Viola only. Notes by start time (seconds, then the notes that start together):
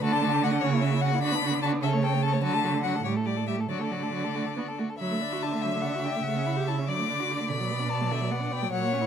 0.02 A3
0.12 D4
0.22 A3
0.30 D4
0.41 A3
0.51 D4
0.61 C#4
0.71 A#3
0.81 C#4
0.91 A#3
1.01 C#4
1.11 A#3
1.21 D4
1.32 B3
1.42 D4
1.51 B3
1.61 D4
1.73 B3
1.84 C#4
1.94 A3
2.03 C#4
2.14 A3
2.24 C#4
2.33 A3
2.43 F#3
2.54 A3
2.64 F#3
2.74 A3
2.84 F#3
2.95 A3
3.05 G3
3.16 A3
3.26 G3
3.37 A3
3.47 G3
3.58 A3
3.69 F#3
3.79 A3
3.91 F#3
4.03 A3
4.13 F#3
4.24 A3
4.35 A3
4.57 B3
4.79 A3
5.01 F#3
5.11 A3
5.21 D4
5.32 F#4
5.43 D4
5.54 A3
5.64 F#3
5.75 A3
5.84 D4
5.95 F#4
6.06 D4
6.16 A3
6.26 A3
6.36 C#4
6.46 E4
6.56 G4
6.68 E4
6.79 C#4
6.89 F#3
6.99 A3
7.09 D4
7.20 F#4
7.31 D4
7.40 A3
7.50 D3
7.60 F#3
7.71 B3
7.81 D4
7.90 B3
8.01 F#3
8.11 D3
8.21 F#3
8.31 B3
8.41 D4
8.52 B3
8.62 F#3
8.72 F#3
8.81 A#3
8.92 C#4
9.01 E4